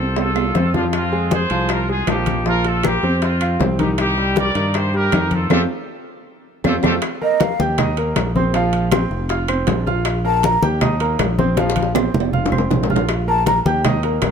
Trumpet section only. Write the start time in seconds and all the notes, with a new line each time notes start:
Already playing: F4 A4
0.17 F4 A4
0.75 D4 F4
0.93 C4 F4
1.32 G#4 C5
1.71 F4 A#4
1.90 F4 G#4
2.09 D#4 G4
2.47 F4 A#4
2.66 F4 A4
2.86 C4 G4
3.23 C4 F4
3.80 D#4 G4
3.99 D#4 G4
4.38 A#4 D5
4.76 G4 C5
4.95 G4 A#4
5.33 F4 A4
5.51 F4 G4 A4
6.65 F4 G4 A4
6.84 F4 G4 A4